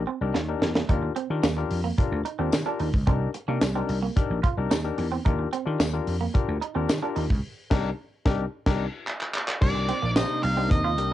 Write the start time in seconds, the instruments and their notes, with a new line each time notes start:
0.07 clean electric guitar C4
0.21 slap bass C2, tine electric piano D4 D#4 G4 A#4
0.34 slap bass D#2, clean electric guitar A#3, snare
0.48 tine electric piano D4 D#4 G4 A#4
0.62 slap bass E2, muted clean electric guitar stroke, snare
0.75 clean electric guitar A#3, snare
0.89 slap bass D#2, tine electric piano D4 F4 G4 A#4, clean electric guitar D#4, kick, closed hi-hat
1.03 muted clean electric guitar stroke
1.16 clean electric guitar C4, closed hi-hat
1.30 slap bass D#3, tine electric piano D4 F4 G4 A#4
1.43 slap bass D#2, clean electric guitar A#3, snare, closed hi-hat, tambourine
1.57 tine electric piano D4 F4 G4 A#4, muted clean electric guitar stroke
1.71 slap bass F2, open hi-hat
1.84 clean electric guitar A#3
1.98 tine electric piano D4 F4 G4 A#4, muted clean electric guitar stroke, kick, closed hi-hat
2.12 slap bass D2
2.25 clean electric guitar D#4, closed hi-hat
2.39 slap bass D#2, clean electric guitar C4, tine electric piano D4 F4 G4 A#4
2.52 slap bass D#3, muted clean electric guitar stroke, snare, closed hi-hat, tambourine
2.66 tine electric piano D4 F4 G4 A#4, clean electric guitar D4
2.80 slap bass D#2, clean electric guitar D#4, open hi-hat
2.94 slap bass C#2, kick
3.07 slap bass C2, clean electric guitar C4, tine electric piano D4 D#4 G4 A#4, kick, closed hi-hat
3.34 muted clean electric guitar stroke, closed hi-hat
3.48 slap bass C3, clean electric guitar A#3, tine electric piano D4 D#4 G4 A#4
3.61 slap bass C2, snare, closed hi-hat, tambourine
3.75 clean electric guitar C4, tine electric piano D4 D#4 G4 A#4
3.89 slap bass C2, muted clean electric guitar stroke, open hi-hat
4.02 clean electric guitar A#3
4.16 tine electric piano D4 D#4 G4 A#4, kick, closed hi-hat
4.30 slap bass A#1
4.43 clean electric guitar F4, kick, closed hi-hat
4.57 slap bass C2, tine electric piano D4 D#4 G4 A#4
4.71 slap bass D#2, clean electric guitar D#4, snare, closed hi-hat, tambourine
4.84 tine electric piano D4 D#4 G4 A#4
4.98 slap bass E2, muted clean electric guitar stroke, open hi-hat
5.12 clean electric guitar C4
5.25 slap bass D#2, tine electric piano D4 F4 G4 A#4, clean electric guitar D#4, kick, closed hi-hat
5.39 muted clean electric guitar stroke
5.53 clean electric guitar C4, closed hi-hat
5.66 slap bass D#3, tine electric piano D4 F4 G4 A#4
5.80 slap bass D#2, clean electric guitar A#3, snare, closed hi-hat, tambourine
5.93 tine electric piano D4 F4 G4 A#4, muted clean electric guitar stroke
6.07 slap bass F2, open hi-hat
6.21 clean electric guitar A#3
6.34 tine electric piano D4 F4 G4 A#4, muted clean electric guitar stroke, kick, closed hi-hat
6.48 slap bass D2
6.62 clean electric guitar D#4, closed hi-hat
6.75 slap bass D#2, clean electric guitar C4, tine electric piano D4 F4 G4 A#4
6.89 slap bass D#3, muted clean electric guitar stroke, snare, closed hi-hat, tambourine
7.03 tine electric piano D4 F4 G4 A#4, clean electric guitar D4
7.16 slap bass D#2, clean electric guitar D#4, open hi-hat
7.30 slap bass C#2, kick
7.70 slap bass C2, tine electric piano D4 D#4 G4 A#4, kick, snare, crash
8.25 slap bass C2, tine electric piano D4 D#4 G4 A#4, kick, snare
8.66 slap bass C2, tine electric piano D4 D#4 G4 A#4, kick, snare, crash
9.07 clap
9.21 clap
9.35 clap
9.48 clap
9.61 slap bass C2, analog synth pad C3 A#3 C4 D#4, tine electric piano D4 D#4 G4 A#4, lead electric guitar D5, kick, crash
9.75 muted clean electric guitar stroke
9.89 clean electric guitar C4, closed hi-hat
10.02 slap bass A#1, clean electric guitar A#3
10.16 clean electric guitar C4, tine electric piano D4 D#4 G4 C5, lead electric guitar D#5, snare, closed hi-hat, tambourine
10.43 slap bass C2, lead electric guitar F5, muted clean electric guitar stroke, open hi-hat
10.57 clean electric guitar C4, tine electric piano D4 D#4 G4 A#4
10.71 slap bass D#2, lead electric guitar D#5, kick, closed hi-hat
10.84 clean electric guitar F4
10.97 slap bass C2, tine electric piano D4 D#4 G4 A#4, muted clean electric guitar stroke, closed hi-hat